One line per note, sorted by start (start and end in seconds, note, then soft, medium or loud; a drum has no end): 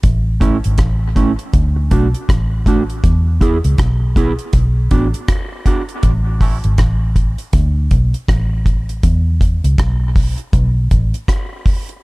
0.03 0.60 A1 loud
0.03 kick loud
0.03 closed hi-hat medium
0.40 0.56 A3 medium
0.40 0.56 C#4 medium
0.40 0.57 E4 medium
0.40 kick medium
0.40 closed hi-hat medium
0.64 0.78 G#1 medium
0.64 closed hi-hat medium
0.78 1.35 A1 loud
0.78 kick loud
0.78 cross-stick loud
0.78 closed hi-hat medium
1.16 1.31 A3 medium
1.16 1.31 C#4 medium
1.16 1.32 E4 medium
1.16 kick medium
1.16 closed hi-hat medium
1.39 closed hi-hat soft
1.54 1.89 D2 loud
1.54 kick loud
1.54 closed hi-hat medium
1.76 muted clean electric guitar stroke soft
1.91 2.12 B1 medium
1.91 2.06 A3 medium
1.91 2.07 D4 medium
1.91 2.07 F#4 medium
1.91 kick medium
1.91 closed hi-hat medium
2.14 closed hi-hat soft
2.29 3.00 A1 medium
2.29 kick loud
2.29 cross-stick loud
2.29 closed hi-hat medium
2.66 2.81 A3 medium
2.66 2.82 D4 medium
2.66 2.82 F#4 loud
2.66 kick medium
2.66 closed hi-hat medium
2.90 closed hi-hat soft
3.04 3.60 E2 medium
3.04 kick loud
3.04 closed hi-hat medium
3.41 3.56 B3 medium
3.41 3.57 E4 loud
3.41 3.57 G#4 loud
3.41 kick medium
3.41 closed hi-hat medium
3.64 3.78 C#2 medium
3.64 closed hi-hat medium
3.78 4.35 B1 medium
3.78 kick loud
3.78 cross-stick loud
3.78 closed hi-hat medium
4.16 4.31 B3 medium
4.16 4.32 E4 loud
4.16 4.32 G#4 loud
4.16 kick medium
4.16 closed hi-hat medium
4.39 closed hi-hat soft
4.53 4.88 B1 loud
4.53 kick loud
4.53 closed hi-hat medium
4.91 5.12 A1 medium
4.91 5.06 B3 medium
4.91 5.06 D4 medium
4.91 5.07 F#4 medium
4.91 kick medium
4.91 closed hi-hat medium
5.14 closed hi-hat soft
5.28 kick loud
5.28 cross-stick loud
5.28 closed hi-hat medium
5.66 5.81 B3 medium
5.66 5.81 D4 loud
5.66 5.82 F#4 loud
5.66 kick medium
5.66 closed hi-hat medium
5.89 closed hi-hat soft
6.03 6.60 A1 loud
6.03 kick loud
6.03 closed hi-hat medium
6.41 6.56 A3 medium
6.41 6.57 C#4 medium
6.41 6.57 E4 loud
6.41 kick medium
6.41 open hi-hat medium
6.64 6.78 G#1 medium
6.64 closed hi-hat medium
6.78 7.35 A1 loud
6.78 kick loud
6.78 cross-stick loud
6.78 closed hi-hat medium
7.16 kick medium
7.16 closed hi-hat medium
7.38 closed hi-hat soft
7.53 7.88 D2 loud
7.53 kick loud
7.53 closed hi-hat medium
7.91 8.12 B1 medium
7.91 kick medium
7.91 closed hi-hat medium
8.14 closed hi-hat soft
8.28 9.00 A1 medium
8.28 kick loud
8.28 cross-stick loud
8.28 closed hi-hat medium
8.66 kick medium
8.66 closed hi-hat medium
8.89 closed hi-hat soft
9.03 9.60 E2 medium
9.03 kick loud
9.03 closed hi-hat medium
9.41 kick loud
9.41 closed hi-hat medium
9.64 9.78 C#2 medium
9.64 closed hi-hat medium
9.78 10.35 B1 loud
9.78 kick loud
9.78 cross-stick loud
9.78 closed hi-hat medium
10.16 kick medium
10.16 open hi-hat medium
10.38 closed hi-hat soft
10.53 10.88 B1 loud
10.53 kick loud
10.53 closed hi-hat medium
10.91 11.12 A1 medium
10.91 kick medium
10.91 closed hi-hat medium
11.14 closed hi-hat soft
11.28 kick loud
11.28 cross-stick loud
11.28 closed hi-hat medium
11.66 kick medium
11.66 open hi-hat medium
11.89 closed hi-hat soft